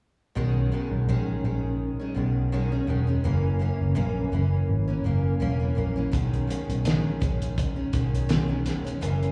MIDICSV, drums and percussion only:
0, 0, Header, 1, 2, 480
1, 0, Start_track
1, 0, Key_signature, 5, "major"
1, 0, Tempo, 723240
1, 232, Time_signature, 4, 2, 24, 8
1, 6184, End_track
2, 0, Start_track
2, 0, Title_t, "Drums"
2, 4070, Note_on_c, 9, 36, 87
2, 4071, Note_on_c, 9, 42, 76
2, 4137, Note_off_c, 9, 36, 0
2, 4137, Note_off_c, 9, 42, 0
2, 4204, Note_on_c, 9, 42, 28
2, 4270, Note_off_c, 9, 42, 0
2, 4317, Note_on_c, 9, 42, 58
2, 4383, Note_off_c, 9, 42, 0
2, 4444, Note_on_c, 9, 42, 45
2, 4511, Note_off_c, 9, 42, 0
2, 4547, Note_on_c, 9, 42, 81
2, 4563, Note_on_c, 9, 38, 100
2, 4613, Note_off_c, 9, 42, 0
2, 4630, Note_off_c, 9, 38, 0
2, 4789, Note_on_c, 9, 42, 67
2, 4791, Note_on_c, 9, 36, 88
2, 4856, Note_off_c, 9, 42, 0
2, 4857, Note_off_c, 9, 36, 0
2, 4923, Note_on_c, 9, 42, 49
2, 4990, Note_off_c, 9, 42, 0
2, 5030, Note_on_c, 9, 36, 75
2, 5030, Note_on_c, 9, 42, 74
2, 5096, Note_off_c, 9, 36, 0
2, 5096, Note_off_c, 9, 42, 0
2, 5264, Note_on_c, 9, 42, 72
2, 5267, Note_on_c, 9, 36, 75
2, 5330, Note_off_c, 9, 42, 0
2, 5333, Note_off_c, 9, 36, 0
2, 5407, Note_on_c, 9, 42, 49
2, 5473, Note_off_c, 9, 42, 0
2, 5503, Note_on_c, 9, 42, 72
2, 5512, Note_on_c, 9, 38, 96
2, 5569, Note_off_c, 9, 42, 0
2, 5578, Note_off_c, 9, 38, 0
2, 5746, Note_on_c, 9, 42, 70
2, 5758, Note_on_c, 9, 38, 32
2, 5812, Note_off_c, 9, 42, 0
2, 5824, Note_off_c, 9, 38, 0
2, 5884, Note_on_c, 9, 42, 47
2, 5951, Note_off_c, 9, 42, 0
2, 5989, Note_on_c, 9, 42, 71
2, 6055, Note_off_c, 9, 42, 0
2, 6123, Note_on_c, 9, 42, 33
2, 6184, Note_off_c, 9, 42, 0
2, 6184, End_track
0, 0, End_of_file